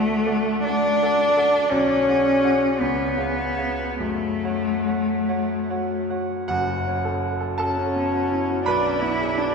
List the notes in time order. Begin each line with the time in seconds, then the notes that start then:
Already playing: D2 A3 A4 D5 F#5
0.26 A4 D5 F#5
0.63 D4 A4 D5
0.68 F#5
1.03 A4 D5 F#5
1.37 A4 D5 F#5
1.69 B1 C#4
2.08 G#4 D5 F#5
2.43 G#4 D5 F#5
2.80 C#2 B3
3.17 G#4 C#5 F5
3.57 G#4 C#5 F5
4.00 F#2 A3
4.44 F#4 C#5 F#5
4.86 F#4 C#5 F#5
5.28 F#4 C#5 F#5
5.70 F#4 C#5 F#5
6.09 F#4 C#5 F#5
6.48 F#1 F#2 F#4 F#5
6.69 F#4
6.87 C#4
7.05 A4
7.23 F#4
7.41 A4
7.58 C#4 F#4 A4 A5
7.77 C#4
7.96 B3
8.12 F#4
8.31 E4
8.49 F#4
8.64 B1 D4 B4 B5
8.84 D4
9.00 B3 E4
9.20 G#4
9.37 D4